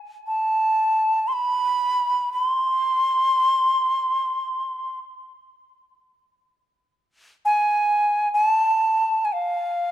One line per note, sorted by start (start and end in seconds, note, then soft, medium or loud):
0.27 1.29 A5 medium
1.28 1.34 C6 medium
1.33 2.32 B5 medium
2.33 2.45 B5 medium
2.45 4.99 C6 medium
7.45 8.29 G#5 medium
8.34 8.45 G#5 medium
8.45 9.26 A5 medium
9.25 9.34 G#5 soft
9.33 9.91 F5 medium